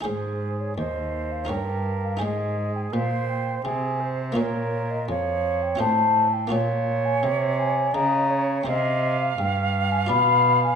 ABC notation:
X:1
M:3/4
L:1/16
Q:1/4=84
K:Ab
V:1 name="Flute"
c3 d e3 f g3 f | e3 g f2 g2 a4 | d3 e f3 g =a3 g | f3 a g2 a2 b3 z |
e3 f g3 a =b3 ^g |]
V:2 name="Flute"
A4 c4 B4 | A4 c4 A2 c2 | B4 d4 c2 z2 | d8 e2 d2 |
f12 |]
V:3 name="Harpsichord"
[EAc]8 [EBd]4 | [EAc]12 | [B,Fd]8 [CFe]4 | [B,Fd]12 |
[Cc]8 [F=d]4 |]
V:4 name="Harpsichord" clef=bass
A,,4 E,,4 G,,4 | A,,4 B,,4 C,4 | B,,4 F,,4 =A,,4 | B,,4 C,4 D,4 |
C,4 G,,4 =B,,4 |]
V:5 name="Cello" clef=bass
A,,4 E,,4 G,,4 | A,,4 B,,4 C,4 | B,,4 F,,4 =A,,4 | B,,4 C,4 D,4 |
C,4 G,,4 =B,,4 |]